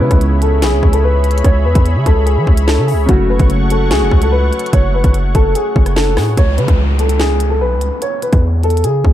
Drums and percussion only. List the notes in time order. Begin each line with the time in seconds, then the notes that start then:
0.11 kick, closed hi-hat
0.21 closed hi-hat
0.42 closed hi-hat
0.62 snare, closed hi-hat
0.83 kick
0.93 closed hi-hat
1.24 closed hi-hat
1.31 closed hi-hat
1.38 closed hi-hat
1.44 kick, closed hi-hat
1.75 kick, closed hi-hat
1.86 closed hi-hat
2.06 kick, closed hi-hat
2.27 closed hi-hat
2.47 kick
2.57 closed hi-hat
2.68 snare
2.88 open hi-hat
3.09 kick, closed hi-hat
3.40 kick, closed hi-hat
3.50 closed hi-hat
3.70 closed hi-hat
3.91 snare, closed hi-hat
4.11 kick
4.22 closed hi-hat
4.53 closed hi-hat
4.59 closed hi-hat
4.66 closed hi-hat
4.73 kick, closed hi-hat
5.04 kick, closed hi-hat
5.14 closed hi-hat
5.35 kick, closed hi-hat
5.55 closed hi-hat
5.76 kick
5.86 cross-stick, closed hi-hat
5.96 snare
6.17 cross-stick, snare, open hi-hat
6.37 kick, closed hi-hat
6.58 closed hi-hat
6.68 kick, closed hi-hat
6.99 closed hi-hat
7.09 closed hi-hat
7.20 snare
7.40 closed hi-hat
7.81 closed hi-hat
8.02 closed hi-hat
8.22 closed hi-hat
8.33 kick, closed hi-hat
8.63 closed hi-hat
8.70 closed hi-hat
8.77 closed hi-hat
8.84 closed hi-hat
9.05 kick